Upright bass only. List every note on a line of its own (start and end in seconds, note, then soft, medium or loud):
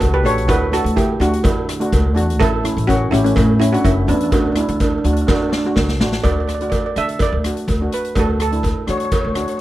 0.01 0.24 C#2 medium
0.24 0.49 A1 medium
0.49 0.76 D2 loud
0.84 1.12 D2 medium
1.20 1.38 D2 medium
1.45 1.81 D3 loud
1.93 2.16 C#2 medium
2.16 2.41 E2 medium
2.41 2.68 A1 loud
2.77 3.04 A1 medium
3.12 3.31 A1 medium
3.37 3.73 A2 loud
3.85 4.09 F#1 medium
4.08 4.32 E2 medium
4.32 4.60 D2 loud
4.69 4.96 D2 medium
5.04 5.23 D2 medium
5.29 5.65 D3 medium
5.77 6.00 C#2 medium
6.00 6.19 A1 medium
6.24 6.79 D2 medium
6.96 7.24 D3 medium
7.32 7.51 D2 medium
7.68 7.86 D2 medium
8.16 8.71 D2 medium
8.89 9.17 D3 medium
9.24 9.43 D2 medium